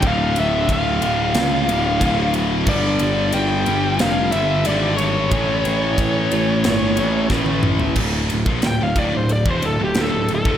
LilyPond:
<<
  \new Staff \with { instrumentName = "Lead electric guitar" } { \time 4/4 \key a \phrygian \tempo 4 = 91 f''8 e''8 f''2~ f''8 r8 | d''4 g''4 f''8 e''8 d''8 cis''8~ | cis''2. r4 | \key d \minor r4 g''16 f''16 d''16 c''16 d''16 c''16 a'16 g'16 a'8 a'8 | }
  \new Staff \with { instrumentName = "Distorted electric guitar" } { \clef bass \time 4/4 \key a \phrygian <d, a, d>2~ <d, a, d>8 <d, a, d>8 <d, a, d>4 | <g, d g>2~ <g, d g>8 <g, d g>8 <g, d g>4 | <a, e a>2~ <a, e a>8 <a, e a>8 <a, e a>4 | \key d \minor r1 | }
  \new Staff \with { instrumentName = "Distorted electric guitar" } { \clef bass \time 4/4 \key a \phrygian <d, a, d>4. <d, a, d>4. <d, a, d>4 | <g, d g>4. <g, d g>4. <g, d g>4 | <a, e a>4. <a, e a>4. <a, e a>4 | \key d \minor <d, a, d>8 <d, a,>16 <bes, f>16 <d, a,>16 <d, a,>16 <d, a,>16 <d, a,>8 <e, b,>16 <d, a,>16 <d, a,>16 <d, a,>16 <d, a,>16 <d, a,>16 <f, c f>16 | }
  \new Staff \with { instrumentName = "Picked electric bass" } { \clef bass \time 4/4 \key a \phrygian d,,8 d,,8 d,,8 d,,8 cis,8 d,,8 d,,4 | g,,8 g,,8 g,,8 g,,8 f,,8 g,,8 gis,,4 | a,,8 a,,8 a,,8 a,,8 g,,8 a,,8 a,,4 | \key d \minor d,,8 d,,16 bes,,16 d,,16 d,,16 d,,16 d,,8 e,,16 d,,16 d,,16 d,,16 d,,16 d,,16 f,,16 | }
  \new DrumStaff \with { instrumentName = "Drums" } \drummode { \time 4/4 <bd cymr>8 cymr8 <bd cymr>8 cymr8 <cymr sn>8 cymr8 <bd cymr>8 cymr8 | <cymc bd>8 cymr8 cymr8 cymr8 <cymr sn>8 cymr8 cymr8 cymr8 | <bd cymr>8 cymr8 <bd cymr>8 cymr8 <cymr sn>8 cymr8 <bd sn>16 tommh16 toml16 tomfh16 | <cymc bd>8 cymr16 bd16 <cymr sn>8 <bd cymr>8 cymr16 bd16 cymr8 <cymr sn>8 cymr16 bd16 | }
>>